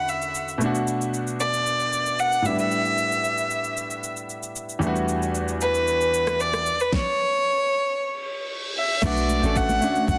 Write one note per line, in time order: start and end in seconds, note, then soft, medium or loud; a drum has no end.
0.00 0.29 D3 medium
0.00 0.30 A3 medium
0.00 0.31 C#4 medium
0.00 0.32 E4 medium
0.00 0.33 F#4 medium
0.00 0.10 F#5 medium
0.09 0.49 E5 medium
0.09 shaker medium
0.22 shaker medium
0.35 shaker medium
0.48 shaker medium
0.58 2.40 B2 medium
0.58 2.41 A3 medium
0.58 2.42 B3 medium
0.58 shaker medium
0.63 2.43 D4 medium
0.63 2.44 F#4 medium
0.75 shaker soft
0.87 shaker medium
1.01 shaker medium
1.14 shaker medium
1.27 shaker medium
1.40 2.21 D5 loud
1.40 shaker medium
1.54 shaker medium
1.67 shaker medium
1.80 shaker medium
1.93 shaker medium
2.06 shaker medium
2.19 2.47 F#5 loud
2.19 shaker medium
2.32 shaker medium
2.42 4.50 A2 medium
2.42 4.51 G3 medium
2.42 4.52 B3 medium
2.42 2.59 E5 medium
2.42 shaker medium
2.48 4.53 D4 medium
2.48 4.54 E4 medium
2.59 4.13 E5 loud
2.59 shaker medium
2.71 shaker medium
2.85 shaker medium
2.98 shaker medium
3.12 shaker medium
3.24 shaker medium
3.38 shaker medium
3.51 shaker medium
3.64 shaker medium
3.77 shaker medium
3.90 shaker soft
4.04 shaker medium
4.17 shaker medium
4.30 shaker medium
4.43 shaker medium
4.56 shaker medium
4.69 shaker medium
4.79 6.61 E2 medium
4.79 6.62 G3 medium
4.79 6.63 A3 medium
4.79 shaker medium
4.84 6.63 B3 medium
4.84 6.64 D4 medium
4.84 6.65 F#4 medium
4.96 shaker soft
5.08 shaker medium
5.22 shaker medium
5.35 shaker medium
5.48 shaker medium
5.61 6.42 B4 loud
5.61 shaker medium
5.75 shaker medium
5.88 shaker medium
6.01 shaker medium
6.14 shaker medium
6.27 cross-stick medium
6.27 shaker medium
6.40 6.82 D5 loud
6.40 shaker medium
6.53 cross-stick medium
6.53 shaker medium
6.66 shaker medium
6.80 6.95 B4 medium
6.80 shaker medium
6.92 8.51 C#5 loud
6.92 kick loud
6.92 snare medium
7.98 reverse cymbal medium
8.77 9.05 E5 medium
9.02 9.41 B1 loud
9.02 9.34 A3 medium
9.02 9.35 B3 medium
9.02 9.35 D4 medium
9.02 9.36 F#4 loud
9.02 9.58 D5 medium
9.02 kick loud
9.02 crash loud
9.02 low conga medium
9.02 shaker medium
9.17 shaker medium
9.29 high conga medium
9.29 shaker medium
9.42 9.80 A1 medium
9.42 9.74 A3 medium
9.42 9.74 C#4 medium
9.42 9.75 D4 medium
9.42 9.76 A4 medium
9.42 shaker medium
9.56 10.09 F#5 loud
9.56 kick loud
9.56 shaker medium
9.69 high conga medium
9.69 shaker medium
9.81 10.18 A3 medium
9.81 10.18 C#4 medium
9.81 10.18 D4 medium
9.81 10.18 F#4 medium
9.81 high conga medium
9.81 shaker medium
9.96 shaker medium
10.08 10.18 B1 loud
10.08 10.18 F#5 loud
10.08 kick loud
10.08 low conga medium
10.08 shaker medium